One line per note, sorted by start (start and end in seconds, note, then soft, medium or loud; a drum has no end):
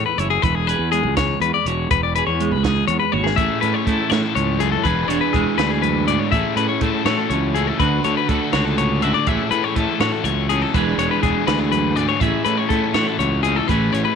0.00 0.44 E2 medium
0.00 0.41 A3 medium
0.00 0.20 E4 medium
0.00 0.69 G#4 medium
0.06 0.18 B4 medium
0.18 0.38 F#1 medium
0.18 1.67 E4 medium
0.18 0.30 C#5 medium
0.18 closed hi-hat medium
0.30 0.42 G#4 medium
0.42 0.73 E1 loud
0.42 1.41 E2 medium
0.42 0.55 B4 medium
0.42 kick loud
0.42 closed hi-hat medium
0.55 0.67 G#4 medium
0.67 2.18 G#4 medium
0.67 0.91 B4 medium
0.67 closed hi-hat medium
0.79 1.05 E2 medium
0.92 2.40 G#3 medium
0.92 1.16 G#4 medium
0.92 closed hi-hat medium
1.03 1.33 C#2 medium
1.17 1.41 C#5 medium
1.17 kick medium
1.17 snare loud
1.17 closed hi-hat loud
1.40 1.51 E2 loud
1.40 1.91 E2 medium
1.40 1.54 B4 medium
1.40 closed hi-hat medium
1.54 1.66 D5 medium
1.65 1.85 E1 medium
1.65 1.88 F#4 medium
1.65 1.91 C#5 medium
1.65 closed hi-hat medium
1.91 2.20 E1 loud
1.91 2.88 E2 medium
1.91 2.03 B4 medium
1.91 kick loud
1.91 closed hi-hat loud
2.03 2.15 D5 medium
2.15 3.36 G#4 medium
2.15 2.26 B4 medium
2.15 closed hi-hat medium
2.27 2.53 E2 medium
2.27 2.52 C#5 medium
2.40 3.35 G#3 medium
2.40 closed hi-hat medium
2.51 2.81 C#2 medium
2.51 2.63 B4 medium
2.63 2.87 G#4 medium
2.63 kick medium
2.63 snare loud
2.63 closed hi-hat medium
2.88 2.98 E2 medium
2.88 3.38 E2 medium
2.88 2.99 C#5 medium
2.88 closed hi-hat medium
3.00 3.12 B4 medium
3.12 3.33 G#1 loud
3.12 3.35 F#4 medium
3.12 3.25 C#5 medium
3.12 high tom medium
3.24 3.37 G#4 medium
3.24 snare medium
3.36 3.47 A1 loud
3.36 3.86 A2 medium
3.36 4.10 A2 medium
3.36 4.12 E3 medium
3.36 3.63 A3 medium
3.36 3.62 C#4 medium
3.36 3.62 E4 loud
3.36 4.85 G#4 medium
3.36 3.60 A4 medium
3.36 3.61 E5 medium
3.36 kick loud
3.36 closed hi-hat medium
3.61 3.72 A2 medium
3.61 3.84 A3 medium
3.61 4.82 C#4 medium
3.61 3.85 C#4 medium
3.61 3.86 E4 medium
3.61 3.87 A4 medium
3.61 3.74 B4 medium
3.61 closed hi-hat medium
3.74 3.86 C#5 medium
3.85 3.97 A2 medium
3.85 4.11 A3 medium
3.85 4.82 A3 medium
3.85 4.10 C#4 medium
3.85 4.10 E4 medium
3.85 5.12 E4 medium
3.85 4.10 A4 medium
3.85 4.09 A4 medium
3.85 kick medium
3.85 closed hi-hat medium
4.10 4.21 A2 loud
4.10 4.36 A2 medium
4.10 4.84 A2 medium
4.10 4.83 E3 medium
4.10 4.61 A3 medium
4.10 4.59 C#4 medium
4.10 4.60 E4 medium
4.10 4.57 A4 medium
4.10 4.22 C#5 medium
4.10 snare medium
4.10 closed hi-hat medium
4.22 4.35 A4 medium
4.35 4.75 C#2 medium
4.35 4.59 G#2 medium
4.35 4.60 C#5 medium
4.35 closed hi-hat medium
4.59 4.84 F#2 medium
4.59 4.84 A3 medium
4.59 4.83 C#4 medium
4.59 4.86 E4 medium
4.59 4.72 G#4 medium
4.59 4.83 A4 medium
4.59 closed hi-hat medium
4.72 4.85 A4 medium
4.83 5.04 E1 loud
4.83 5.57 E2 medium
4.83 5.31 E3 medium
4.83 5.10 B3 medium
4.83 5.08 D4 medium
4.83 6.29 G#4 medium
4.83 5.07 G#4 loud
4.83 5.08 B4 medium
4.83 kick loud
4.83 closed hi-hat medium
5.08 5.19 E1 medium
5.08 5.32 B3 medium
5.08 6.29 D4 medium
5.08 5.33 D4 medium
5.08 5.35 G#4 medium
5.08 5.20 C#5 medium
5.08 closed hi-hat medium
5.21 5.33 B4 medium
5.32 5.44 E1 medium
5.32 5.59 E3 medium
5.32 6.30 G#3 medium
5.32 5.58 B3 medium
5.32 5.57 D4 medium
5.32 6.30 E4 medium
5.32 5.58 G#4 medium
5.32 5.56 G#4 medium
5.32 kick medium
5.32 closed hi-hat medium
5.58 6.17 D2 loud
5.58 5.82 E2 medium
5.58 6.31 E3 medium
5.58 6.09 B3 medium
5.58 6.08 D4 medium
5.58 6.06 G#4 medium
5.58 5.70 B4 medium
5.58 snare loud
5.58 closed hi-hat medium
5.70 5.83 G#4 medium
5.82 6.07 F#2 medium
5.82 6.07 B4 medium
5.82 closed hi-hat medium
6.07 6.32 G#2 medium
6.07 6.32 B3 medium
6.07 6.31 D4 medium
6.07 6.30 G#4 medium
6.07 6.19 D5 medium
6.07 closed hi-hat medium
6.19 6.31 C#5 medium
6.32 6.42 A1 loud
6.32 6.81 A2 medium
6.32 7.30 A2 medium
6.32 6.81 E3 medium
6.32 6.58 A3 medium
6.32 6.58 C#4 loud
6.32 6.56 E4 loud
6.32 7.06 G#4 medium
6.32 6.56 A4 loud
6.32 6.56 E5 medium
6.32 kick loud
6.32 closed hi-hat medium
6.56 6.66 A2 medium
6.56 6.81 A3 medium
6.56 7.32 C#4 medium
6.56 6.81 C#4 medium
6.56 6.81 E4 medium
6.56 6.83 A4 medium
6.56 6.69 B4 medium
6.56 closed hi-hat medium
6.69 6.82 C#5 medium
6.81 6.91 A2 medium
6.81 7.07 A3 medium
6.81 7.79 A3 medium
6.81 7.06 C#4 medium
6.81 7.05 E4 medium
6.81 7.55 E4 medium
6.81 7.05 A4 medium
6.81 kick medium
6.81 closed hi-hat medium
7.05 7.15 A2 medium
7.05 7.79 A2 medium
7.05 7.77 E3 medium
7.05 7.58 A3 medium
7.05 7.57 C#4 medium
7.05 7.55 E4 medium
7.05 7.78 F#4 medium
7.05 7.55 A4 medium
7.05 7.18 C#5 medium
7.05 snare loud
7.05 closed hi-hat medium
7.18 7.30 A4 medium
7.30 7.69 C#2 medium
7.30 7.80 E2 medium
7.30 7.82 C#4 medium
7.30 7.54 C#5 medium
7.30 closed hi-hat medium
7.55 7.79 A3 medium
7.55 7.80 C#4 medium
7.55 7.77 E4 medium
7.55 7.79 E4 medium
7.55 7.67 G#4 medium
7.55 7.81 A4 medium
7.55 closed hi-hat medium
7.67 7.79 A4 medium
7.78 7.99 D2 loud
7.78 8.28 D3 medium
7.78 9.27 D3 medium
7.78 8.28 A3 medium
7.78 8.06 D4 medium
7.78 8.29 F#4 medium
7.78 8.05 F#4 medium
7.78 8.04 A4 medium
7.78 8.04 B4 medium
7.78 kick loud
7.78 closed hi-hat medium
8.04 8.14 D2 medium
8.04 8.29 D4 medium
8.04 8.30 F#4 medium
8.04 8.31 A4 medium
8.04 8.17 C#5 medium
8.04 closed hi-hat medium
8.17 8.28 B4 medium
8.28 8.39 D2 medium
8.28 8.55 A3 medium
8.28 9.24 A3 medium
8.28 8.55 D4 medium
8.28 8.53 F#4 medium
8.28 8.54 F#4 medium
8.28 8.52 A4 medium
8.28 kick medium
8.28 closed hi-hat medium
8.53 9.12 C#2 medium
8.53 9.27 D3 medium
8.53 9.27 A3 medium
8.53 9.04 D4 medium
8.53 9.02 F#4 medium
8.53 9.03 F#4 medium
8.53 9.01 A4 medium
8.53 8.65 C#5 medium
8.53 snare loud
8.53 closed hi-hat medium
8.65 8.78 A4 medium
8.77 9.26 A2 medium
8.77 9.02 C#5 medium
8.77 closed hi-hat medium
9.02 9.27 D4 medium
9.02 9.24 F#4 medium
9.02 9.26 F#4 medium
9.02 9.25 A4 medium
9.02 9.14 E5 medium
9.02 closed hi-hat medium
9.14 9.27 D5 medium
9.27 9.37 A1 loud
9.27 10.25 A2 medium
9.27 9.76 A2 medium
9.27 10.03 E3 medium
9.27 9.54 A3 medium
9.27 9.53 C#4 medium
9.27 9.52 E4 loud
9.27 10.01 G#4 medium
9.27 9.51 A4 loud
9.27 9.50 E5 medium
9.27 kick loud
9.27 closed hi-hat medium
9.51 9.61 A2 medium
9.51 9.75 A3 medium
9.51 9.76 C#4 medium
9.51 9.78 E4 medium
9.51 9.78 A4 medium
9.51 9.64 B4 medium
9.51 closed hi-hat medium
9.64 9.75 C#5 medium
9.75 9.86 A2 medium
9.75 10.74 E3 medium
9.75 10.01 A3 medium
9.75 10.50 C#4 medium
9.75 10.01 C#4 medium
9.75 10.01 E4 medium
9.75 10.00 A4 medium
9.75 kick medium
9.75 closed hi-hat medium
10.00 10.10 A2 loud
10.00 10.74 A2 medium
10.00 10.73 E3 medium
10.00 10.51 A3 medium
10.00 10.51 C#4 medium
10.00 10.50 E4 medium
10.00 10.71 F#4 medium
10.00 10.48 A4 medium
10.00 10.12 C#5 medium
10.00 snare loud
10.00 closed hi-hat medium
10.12 10.24 A4 medium
10.24 10.64 C#2 medium
10.24 10.72 E2 medium
10.24 10.49 C#5 medium
10.24 closed hi-hat medium
10.49 10.74 A3 medium
10.49 10.72 C#4 medium
10.49 10.74 C#4 medium
10.49 10.76 E4 medium
10.49 10.62 G#4 medium
10.49 10.73 A4 medium
10.49 closed hi-hat medium
10.62 10.74 A4 medium
10.74 10.94 E1 medium
10.74 11.45 E2 medium
10.74 11.22 E3 medium
10.74 11.23 E3 medium
10.74 10.98 G#3 medium
10.74 11.00 B3 loud
10.74 10.98 D4 medium
10.74 11.23 D4 medium
10.74 10.97 G#4 loud
10.74 12.22 G#4 medium
10.74 10.98 B4 medium
10.74 kick loud
10.74 closed hi-hat medium
10.98 11.08 E1 medium
10.98 12.25 G#3 medium
10.98 11.22 B3 medium
10.98 11.23 D4 medium
10.98 11.25 G#4 medium
10.98 11.11 C#5 medium
10.98 closed hi-hat medium
11.11 11.22 B4 medium
11.22 11.33 E1 medium
11.22 11.48 E3 medium
11.22 12.69 E3 medium
11.22 11.47 B3 medium
11.22 12.19 D4 medium
11.22 11.46 D4 medium
11.22 11.47 G#4 medium
11.22 11.45 G#4 medium
11.22 kick medium
11.22 closed hi-hat medium
11.46 12.07 D2 loud
11.46 11.71 E2 medium
11.46 12.20 E3 medium
11.46 11.97 B3 medium
11.46 11.96 D4 medium
11.46 11.95 G#4 medium
11.46 11.59 B4 medium
11.46 snare loud
11.46 closed hi-hat medium
11.59 11.71 G#4 medium
11.71 11.95 F#2 medium
11.71 11.96 B4 medium
11.71 closed hi-hat medium
11.95 12.21 G#2 medium
11.95 12.20 B3 medium
11.95 12.20 D4 medium
11.95 12.22 G#4 medium
11.95 12.08 D5 medium
11.95 closed hi-hat medium
12.09 12.20 C#5 medium
12.19 12.31 A1 loud
12.19 12.96 A2 medium
12.19 13.20 A2 medium
12.19 12.69 E3 medium
12.19 12.47 A3 medium
12.19 12.46 C#4 medium
12.19 12.44 E4 loud
12.19 12.96 G#4 medium
12.19 12.44 E5 medium
12.19 kick loud
12.19 closed hi-hat medium
12.45 12.56 A2 medium
12.45 12.71 A3 medium
12.45 12.72 C#4 medium
12.45 12.72 E4 medium
12.45 12.57 B4 medium
12.45 closed hi-hat medium
12.57 12.70 C#5 medium
12.69 12.80 A2 medium
12.69 14.15 E3 medium
12.69 12.95 E3 medium
12.69 12.94 A3 medium
12.69 13.46 C#4 medium
12.69 12.94 C#4 medium
12.69 12.94 A4 medium
12.69 kick medium
12.69 closed hi-hat medium
12.73 12.93 E4 medium
12.93 13.04 A2 loud
12.93 13.67 A2 medium
12.93 13.68 E3 medium
12.93 13.45 A3 medium
12.93 13.44 C#4 medium
12.93 13.42 E4 medium
12.93 13.67 F#4 medium
12.93 13.07 C#5 medium
12.93 snare medium
12.93 closed hi-hat medium
13.07 13.19 A4 medium
13.19 13.59 C#2 medium
13.19 13.69 E2 medium
13.19 13.43 C#5 medium
13.19 closed hi-hat medium
13.43 13.69 A3 medium
13.43 13.69 C#4 medium
13.43 13.70 E4 medium
13.43 13.56 G#4 medium
13.43 closed hi-hat medium
13.47 14.15 C#4 medium
13.56 13.68 A4 medium
13.67 13.89 A1 loud
13.67 14.15 A2 medium
13.67 14.15 E3 medium
13.67 13.93 A3 medium
13.67 13.92 C#4 medium
13.67 13.91 E4 loud
13.67 14.15 G#4 medium
13.67 13.93 B4 medium
13.67 kick medium
13.67 closed hi-hat medium
13.92 14.03 A1 medium
13.92 14.15 A3 medium
13.92 14.15 C#4 medium
13.92 14.15 E4 medium
13.92 14.04 C#5 medium
13.92 closed hi-hat medium
14.05 14.15 B4 medium